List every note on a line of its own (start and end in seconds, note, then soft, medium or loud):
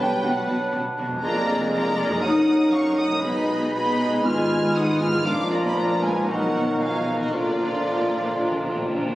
0.00 1.16 B2 medium
0.00 0.97 F#3 medium
0.00 1.19 F#3 soft
0.00 0.24 G3 medium
0.00 1.14 D4 soft
0.00 1.96 D4 medium
0.00 0.94 B4 medium
0.00 1.23 B4 soft
0.00 0.25 B4 medium
0.00 0.24 G5 medium
0.23 0.32 B1 medium
0.23 0.31 B2 medium
0.23 0.74 F#3 medium
0.23 0.31 D4 medium
0.23 0.31 F#4 medium
0.23 0.74 F#5 medium
0.27 0.74 B4 medium
0.48 0.57 B1 medium
0.48 0.56 B2 medium
0.48 0.56 D4 medium
0.48 0.56 F#4 medium
0.72 0.82 B1 medium
0.72 0.80 B2 medium
0.72 0.80 D4 medium
0.72 0.80 F#4 medium
0.98 1.07 B1 medium
0.98 1.06 B2 medium
0.98 1.06 D4 medium
0.98 1.06 F#4 medium
1.06 2.16 F2 medium
1.10 2.18 G#3 soft
1.15 2.21 D4 soft
1.19 2.19 F2 medium
1.19 1.35 F4 medium
1.19 1.35 G#4 medium
1.19 2.17 A#4 medium
1.19 1.69 A#5 medium
1.23 2.19 F1 medium
1.23 2.24 G#3 medium
1.23 1.70 A#3 medium
1.23 3.24 A#4 medium
1.23 1.71 D5 medium
1.23 1.70 A#5 medium
1.35 1.48 D4 medium
1.35 1.48 A#4 medium
1.47 1.60 F4 medium
1.47 1.60 G#4 medium
1.60 1.73 D4 soft
1.60 1.73 A#4 medium
1.72 2.22 A#3 medium
1.72 1.84 F4 medium
1.72 1.84 G#4 medium
1.72 2.22 D5 medium
1.72 2.21 A#5 medium
1.72 2.22 A#5 medium
1.85 1.98 D4 medium
1.85 1.98 A#4 medium
1.98 2.11 F4 medium
1.98 2.11 G#4 medium
2.05 3.16 F#2 medium
2.09 4.20 F#3 soft
2.09 2.23 D4 medium
2.09 2.23 A#4 medium
2.14 3.12 D#4 soft
2.18 3.20 F#2 medium
2.18 3.23 A#4 soft
2.22 3.21 F#1 medium
2.22 3.23 F#3 medium
2.22 2.34 A#3 medium
2.22 4.26 D#4 medium
2.22 2.73 D#4 medium
2.22 2.34 F#4 medium
2.22 2.72 F#5 medium
2.22 2.73 D#6 medium
2.22 2.72 D#6 medium
2.35 2.47 D#4 medium
2.35 2.48 A#4 medium
2.48 2.60 A#3 medium
2.48 2.60 F#4 medium
2.60 2.73 D#4 soft
2.60 2.73 A#4 soft
2.71 2.85 A#3 soft
2.71 2.98 C#4 medium
2.71 2.85 F#4 medium
2.71 2.97 F5 medium
2.71 2.97 C#6 medium
2.71 2.98 C#6 medium
2.85 2.98 D#4 medium
2.85 2.98 A#4 soft
2.97 3.11 A#3 medium
2.97 3.23 D#4 medium
2.97 3.10 F#4 medium
2.97 3.06 F#5 medium
2.97 3.22 D#6 loud
2.97 3.23 D#6 medium
3.05 4.18 B2 medium
3.09 4.09 G#3 soft
3.09 3.23 D#4 medium
3.09 3.23 A#4 medium
3.14 4.22 D#4 soft
3.18 4.19 B4 soft
3.22 4.25 B1 medium
3.22 4.25 B2 medium
3.22 5.27 G#3 medium
3.22 3.71 B3 medium
3.22 3.34 F#4 medium
3.22 3.35 G#4 medium
3.22 5.26 B4 medium
3.22 3.73 D#5 medium
3.22 3.72 B5 medium
3.22 3.74 B5 medium
3.35 3.48 D#4 medium
3.35 3.46 F#4 medium
3.47 3.59 F#4 medium
3.47 3.61 G#4 medium
3.61 3.74 D#4 soft
3.61 3.72 F#4 medium
3.73 4.23 B3 medium
3.73 3.85 F#4 medium
3.73 3.86 G#4 medium
3.73 4.24 D#5 medium
3.73 4.24 B5 loud
3.73 4.24 B5 medium
3.86 3.99 D#4 medium
3.86 3.98 F#4 medium
4.00 4.10 F#4 medium
4.00 4.12 G#4 medium
4.06 5.18 G#2 medium
4.11 5.21 G#3 soft
4.11 4.24 D#4 medium
4.11 4.25 F#4 medium
4.15 5.15 F4 soft
4.20 4.75 F4 medium
4.20 5.25 B4 soft
4.24 5.24 G#1 medium
4.24 5.23 G#2 medium
4.24 4.37 G#3 medium
4.24 6.28 F4 medium
4.24 4.37 G#4 medium
4.24 4.74 G#5 medium
4.24 4.75 F6 medium
4.24 4.76 F6 medium
4.37 4.50 B3 soft
4.37 4.50 F4 soft
4.50 4.63 G#3 medium
4.50 4.63 G#4 soft
4.64 4.76 B3 soft
4.64 4.76 F4 soft
4.75 4.88 G#3 medium
4.75 5.00 D#4 medium
4.75 4.88 G#4 medium
4.75 5.01 F#5 medium
4.75 5.01 D#6 medium
4.88 5.01 B3 soft
4.88 5.01 F4 medium
4.99 5.13 G#3 medium
4.99 5.25 F4 medium
4.99 5.13 G#4 medium
4.99 5.09 G#5 medium
4.99 5.24 F6 medium
4.99 5.26 F6 medium
5.07 6.21 A#2 medium
5.12 6.23 F3 soft
5.12 5.26 B3 soft
5.12 5.24 F4 medium
5.17 6.25 F4 soft
5.21 6.27 A#2 medium
5.21 6.22 A#4 soft
5.25 6.28 A#1 medium
5.25 5.98 A#2 medium
5.25 6.30 F3 medium
5.25 5.51 D4 medium
5.25 5.37 D4 medium
5.25 5.37 F4 medium
5.25 9.15 A#4 medium
5.25 5.51 F5 medium
5.25 5.50 D6 medium
5.25 5.51 D6 medium
5.38 5.51 A#3 soft
5.38 5.50 D4 soft
5.50 5.63 A#3 medium
5.50 5.63 D4 medium
5.50 5.64 F4 medium
5.50 5.64 D5 medium
5.50 5.55 A#5 medium
5.50 5.57 A#5 medium
5.63 5.77 A#3 soft
5.63 5.70 B3 medium
5.63 5.75 D4 soft
5.63 5.76 D#5 medium
5.63 5.76 B5 medium
5.63 5.77 B5 medium
5.75 6.01 A#3 medium
5.75 5.89 D4 medium
5.75 5.89 F4 medium
5.75 6.02 D5 medium
5.75 6.02 A#5 medium
5.75 6.03 A#5 medium
5.90 6.03 A#3 soft
5.90 6.01 D4 soft
6.01 6.27 G#3 medium
6.01 6.14 D4 medium
6.01 6.16 F4 medium
6.01 6.27 B4 medium
6.01 6.28 G#5 medium
6.10 7.27 B2 soft
6.15 6.28 A#3 soft
6.15 7.19 A#3 soft
6.15 6.28 D4 soft
6.19 7.31 D#4 soft
6.24 6.79 F#3 medium
6.24 7.28 A#4 soft
6.24 6.80 A#4 medium
6.28 7.34 B1 medium
6.28 7.33 B2 medium
6.28 7.16 D#3 medium
6.28 6.40 B3 medium
6.28 6.40 D#4 medium
6.28 7.35 F#4 medium
6.28 6.79 F#5 medium
6.28 6.80 F#5 medium
6.41 6.54 A#3 soft
6.41 6.54 F#4 soft
6.53 6.67 B3 soft
6.53 6.67 D#4 soft
6.67 6.80 A#3 soft
6.67 6.80 F#4 soft
6.79 7.19 F3 medium
6.79 6.92 B3 soft
6.79 6.93 D#4 soft
6.79 7.20 G#4 medium
6.79 7.19 F5 medium
6.79 7.20 F5 medium
6.93 7.06 A#3 soft
6.93 7.07 F#4 soft
7.07 7.20 B3 soft
7.07 7.20 D#4 soft
7.16 9.15 A#2 medium
7.16 7.33 D#3 medium
7.16 7.33 F#4 medium
7.16 7.26 D#5 medium
7.20 9.15 A#3 soft
7.20 7.34 A#3 soft
7.20 7.34 F#4 soft
7.20 7.33 D#5 medium
7.25 9.15 F4 soft
7.30 9.15 A#2 medium
7.30 8.94 D3 medium
7.30 9.15 F3 medium
7.30 9.15 A#4 soft
7.30 8.90 D5 medium
7.34 9.15 A#1 medium
7.34 7.46 D4 soft
7.34 9.15 F4 medium
7.34 8.94 F4 medium
7.34 7.46 F4 soft
7.41 7.48 A#2 soft
7.48 7.61 A#3 soft
7.48 7.59 D4 soft
7.57 7.64 A#2 soft
7.57 7.72 D4 soft
7.57 7.74 F4 soft
7.65 7.71 A#2 soft
7.73 7.79 A#2 soft
7.73 7.87 A#3 soft
7.73 7.86 D4 soft
7.81 7.87 A#2 soft
7.87 7.95 A#2 soft
7.87 7.99 D4 soft
7.87 8.00 F4 soft
7.96 8.03 A#2 soft
8.00 8.14 A#3 soft
8.00 8.12 D4 soft
8.04 8.11 A#2 soft
8.12 8.18 A#2 soft
8.12 8.26 D4 soft
8.12 8.27 F4 soft
8.20 8.26 A#2 soft
8.27 8.34 A#2 medium
8.27 8.40 A#3 soft
8.27 8.39 D4 soft
8.35 8.42 A#2 medium
8.40 8.49 A#2 medium
8.40 8.52 D4 soft
8.40 8.53 F4 soft
8.51 8.57 A#2 medium
8.51 8.67 A#3 soft
8.51 8.65 D4 soft
8.58 8.64 A#2 medium
8.66 8.72 A#2 medium
8.66 8.79 D4 soft
8.66 8.80 F4 soft
8.73 8.79 A#2 medium
8.80 8.87 A#2 medium
8.80 8.94 A#3 soft
8.80 8.91 D4 soft
8.89 8.95 A#2 medium
8.93 9.04 A#2 medium
8.93 9.05 D4 soft
8.93 9.06 F4 soft
9.05 9.11 A#2 medium
9.05 9.15 A#3 soft
9.05 9.15 D4 soft